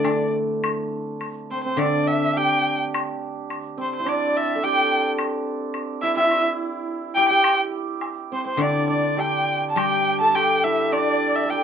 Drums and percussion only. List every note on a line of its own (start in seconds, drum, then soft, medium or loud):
0.04 high woodblock soft
0.04 low woodblock soft
0.64 high woodblock medium
1.21 high woodblock soft
1.79 high woodblock soft
2.94 high woodblock medium
3.50 high woodblock soft
4.07 high woodblock soft
5.19 high woodblock medium
5.74 high woodblock soft
6.31 high woodblock soft
7.44 high woodblock medium
8.01 high woodblock soft
8.01 low woodblock soft
8.59 high woodblock soft
9.19 low woodblock soft
9.77 high woodblock medium
10.36 high woodblock soft
10.93 high woodblock soft